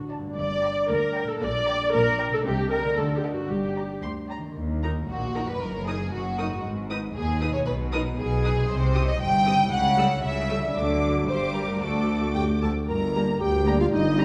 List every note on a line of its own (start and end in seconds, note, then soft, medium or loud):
0.00 0.26 A1 soft
0.00 0.27 A2 soft
0.00 0.30 D3 soft
0.00 0.32 A3 soft
0.00 0.27 D4 soft
0.00 0.37 A4 soft
0.10 0.30 D5 soft
0.10 0.30 A5 soft
0.10 0.31 A5 soft
0.19 1.35 G2 soft
0.23 1.27 A#3 soft
0.28 1.31 D4 soft
0.32 1.36 G4 soft
0.37 0.78 G1 medium
0.37 0.79 G2 medium
0.37 0.86 D5 medium
0.63 0.83 D5 soft
0.63 0.83 G5 soft
0.63 0.83 A#5 soft
0.89 1.31 D2 medium
0.89 1.29 A#4 medium
1.15 1.35 D5 medium
1.15 1.35 G5 medium
1.15 1.35 A#5 soft
1.24 2.39 A#2 soft
1.28 2.41 A#3 soft
1.28 1.42 A4 medium
1.33 2.43 D4 soft
1.37 2.98 G4 soft
1.42 1.83 A#1 medium
1.42 1.83 A#2 medium
1.42 1.94 D5 medium
1.68 1.87 D5 medium
1.68 1.87 G5 medium
1.68 1.87 A#5 medium
1.93 2.35 A#1 medium
1.93 2.35 A#2 medium
1.93 2.31 A#4 medium
2.20 2.39 D5 medium
2.20 2.39 G5 medium
2.20 2.39 A#5 medium
2.28 2.91 C3 soft
2.32 3.46 A3 soft
2.32 2.38 A4 medium
2.37 2.87 D#4 soft
2.41 3.50 A4 soft
2.46 2.87 C2 medium
2.46 2.87 C3 medium
2.46 2.71 G4 medium
2.71 2.97 A#4 medium
2.71 2.91 D#5 medium
2.71 2.91 G5 medium
2.71 2.91 A5 medium
2.80 3.43 D3 soft
2.84 3.46 C4 soft
2.89 3.48 D#4 soft
2.93 3.50 F#4 soft
2.98 3.39 D2 medium
2.98 3.40 D3 medium
2.98 3.15 A4 medium
3.16 3.33 G4 medium
3.24 3.43 D#5 soft
3.24 3.43 F#5 soft
3.24 3.43 A5 soft
3.33 4.50 G2 soft
3.33 3.51 F#4 medium
3.37 4.41 A#3 soft
3.42 4.54 D4 soft
3.46 4.57 G4 soft
3.50 3.92 G1 soft
3.50 3.93 G2 medium
3.50 4.04 G4 medium
3.76 3.96 D5 soft
3.76 3.96 G5 soft
3.76 3.97 A#5 soft
4.03 4.46 D2 soft
4.03 4.11 C6 soft
4.30 4.50 D5 soft
4.30 4.50 G5 soft
4.30 4.38 A#5 soft
4.38 5.54 D#3 soft
4.43 5.47 A#3 soft
4.47 5.51 D#4 soft
4.52 5.56 A#4 soft
4.56 5.00 D#2 medium
4.56 5.01 D#2 medium
4.82 4.91 D#4 soft
4.82 4.91 A#4 soft
4.82 4.90 A#5 soft
5.08 5.52 A#1 medium
5.08 5.53 A#2 soft
5.08 5.45 F#4 medium
5.35 5.43 D#4 soft
5.35 5.43 A#4 soft
5.35 5.43 A#5 soft
5.44 6.58 F#2 soft
5.48 6.60 A#3 soft
5.48 5.61 B4 medium
5.52 6.54 D#4 soft
5.57 6.04 F#1 medium
5.57 6.04 F#2 medium
5.57 6.65 A#4 soft
5.57 5.87 A#4 medium
5.85 5.95 D#4 soft
5.85 6.12 G#4 medium
5.85 5.95 A#4 soft
5.85 5.95 D#6 soft
6.12 6.56 F#1 medium
6.12 6.56 F#2 medium
6.12 6.63 F#4 medium
6.38 6.46 D#4 soft
6.38 6.46 A#4 soft
6.38 6.47 D#6 soft
6.47 7.60 G#2 soft
6.51 7.52 G#3 soft
6.56 7.57 D#4 soft
6.60 7.61 B4 soft
6.64 7.07 G#1 medium
6.64 7.07 G#2 medium
6.90 6.98 D#4 soft
6.90 6.98 B4 soft
6.90 6.98 D#6 soft
7.15 7.58 D#2 medium
7.15 7.59 D#2 medium
7.15 7.51 G#4 medium
7.41 7.49 D#4 soft
7.41 7.49 B4 soft
7.41 7.49 D#6 soft
7.49 8.62 B2 soft
7.53 8.65 G#3 soft
7.53 7.59 C#5 medium
7.58 8.59 D#4 soft
7.62 8.69 B4 soft
7.62 7.74 B4 medium
7.67 8.10 B1 medium
7.67 8.10 B2 medium
7.92 8.01 D#4 medium
7.92 8.01 A#4 medium
7.92 8.01 B4 medium
7.92 8.00 D#6 medium
8.18 8.61 B1 medium
8.18 8.61 B2 medium
8.18 8.68 G#4 medium
8.44 8.52 D#4 medium
8.44 8.53 B4 medium
8.44 8.52 D#6 soft
8.52 9.65 C3 medium
8.56 9.67 C4 soft
8.61 9.70 D#4 soft
8.65 10.76 G4 soft
8.69 9.12 C2 medium
8.69 9.12 C3 medium
8.69 9.07 C5 medium
8.94 9.03 C4 medium
8.94 9.03 G4 medium
8.94 9.02 D#6 medium
9.08 9.20 D#5 medium
9.20 9.63 G1 medium
9.20 9.63 G2 medium
9.20 9.70 G5 medium
9.46 9.54 C4 medium
9.46 9.54 G4 soft
9.46 9.54 D#6 soft
9.54 10.69 C#3 medium
9.59 10.71 G3 soft
9.63 10.74 E4 soft
9.68 10.15 C#2 medium
9.68 10.70 A4 soft
9.68 10.22 F#5 medium
9.72 10.15 C#3 medium
9.97 10.05 G3 medium
9.97 10.05 A4 soft
9.97 10.06 E6 medium
10.23 10.67 C#2 medium
10.23 10.67 C#3 medium
10.23 10.74 E5 medium
10.49 10.57 G3 soft
10.49 10.57 A4 soft
10.49 10.57 E6 soft
10.58 11.22 D3 soft
10.62 11.24 F#3 soft
10.66 11.18 D4 soft
10.71 11.28 A4 soft
10.71 11.24 A4 medium
10.75 11.25 D2 medium
10.75 11.25 D3 medium
10.75 11.25 F#3 medium
10.75 11.25 D6 medium
11.11 11.75 G2 soft
11.15 11.78 G3 soft
11.20 11.71 D4 soft
11.24 11.82 G3 medium
11.24 11.82 G4 soft
11.28 11.82 G1 medium
11.28 11.82 G2 medium
11.28 11.82 G4 medium
11.28 11.53 C5 medium
11.28 11.81 D6 soft
11.55 11.82 A#4 medium
11.63 12.82 D3 soft
11.68 12.85 A3 soft
11.72 13.67 D4 soft
11.77 12.89 F#4 soft
11.77 12.67 F#4 soft
11.81 12.30 D2 soft
11.81 12.68 D2 soft
11.81 12.69 A3 soft
11.81 12.35 A4 medium
11.81 12.68 D6 soft
12.34 12.44 F#2 medium
12.34 12.48 G4 medium
12.34 12.42 G5 medium
12.62 12.71 D2 medium
12.62 12.74 A4 medium
12.62 12.70 A5 soft
12.88 13.33 G1 medium
12.88 13.33 G2 medium
12.88 13.92 G2 medium
12.88 13.40 A#4 medium
12.88 13.40 A#5 medium
13.15 13.26 G3 soft
13.15 14.18 A#3 soft
13.15 13.24 A#3 soft
13.15 13.26 D4 soft
13.15 13.24 G4 soft
13.15 13.23 A#5 soft
13.40 13.84 D2 medium
13.40 13.79 G4 medium
13.40 14.25 G4 soft
13.40 13.79 G5 medium
13.66 13.77 G3 medium
13.66 13.75 A#3 medium
13.66 13.95 D4 soft
13.66 13.78 D4 soft
13.66 13.75 G4 medium
13.66 13.74 A#5 medium
13.80 13.86 F4 medium
13.80 13.85 F5 medium
13.91 14.25 G1 medium
13.91 14.25 G2 medium
13.91 14.25 D#4 medium
13.91 14.25 D#5 medium
14.17 14.25 G3 medium
14.17 14.25 A#3 medium
14.17 14.25 C4 medium
14.17 14.25 G4 medium
14.17 14.25 A#5 medium